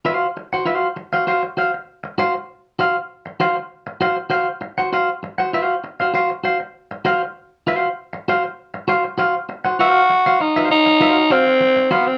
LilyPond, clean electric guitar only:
\new Staff \with { instrumentName = "Clean electric guitar" } { \time 4/4 \key f \phrygian \tempo 4 = 98 <ges' c'' f''>16 r8 <ges' c'' ges''>16 <ges' c'' f''>16 r8 <ges' c'' f''>16 <ges' c'' f''>16 r16 <ges' c'' f''>16 r8. <ges' c'' f''>16 r16 | r8 <ges' c'' f''>16 r8. <ges' c'' f''>16 r8. <ges' c'' f''>16 r16 <ges' c'' f''>16 r8 <ges' c'' ges''>16 | <ges' c'' f''>16 r8 <ges' c'' ges''>16 <ges' c'' f''>16 r8 <ges' c'' f''>16 <ges' c'' f''>16 r16 <ges' c'' f''>16 r8. <ges' c'' f''>16 r16 | r8 <ges' c'' f''>16 r8. <ges' c'' f''>16 r8. <ges' c'' f''>16 r16 <ges' c'' f''>16 r8 <ges' c'' ges''>16 |
<ges' c'' f''>16 r8 <ges' c'' f''>16 r16 <ges' c'' f''>16 r8 <ges' c'' f''>16 r16 <ges' c'' f''>16 r8. <ges' c'' f''>16 r16 | }